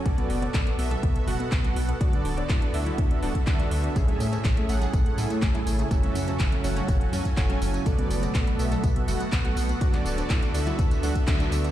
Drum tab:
HH |xxoxxxoxxxoxxxox|xxoxxxoxxxoxxxox|xxoxxxoxxxoxxxox|xxoxxxoxxxoxxxox|
TB |----------------|----------------|x-xxx-xxx-xxx-xx|x-xxx-xxx-xxx-xx|
CB |---x------------|---x------------|---x------------|---x------------|
CP |----x-------x---|----x-------x---|----x-------x---|----x-------x---|
CG |-o--o--o--o--o--|-o--o--o--o--o--|-o--o--o--o--o--|-o--o--o--o--o--|
BD |o---o---o---o---|o---o---o--oo---|o---o---o---o---|o---o---o--oo---|

HH |xxoxxxoxxxoxxxox|xxoxxxoxxxoxxxox|
TB |x-xxx-xxx-xxx-xx|xxxxxxxxxxxxxxxx|
CB |---x------------|---x------------|
CP |----x-------x---|-x--x-------x---|
CG |-o--o--o--o--o--|-o--o--o--o--o--|
BD |o---o---o---o---|o---o---o--oo---|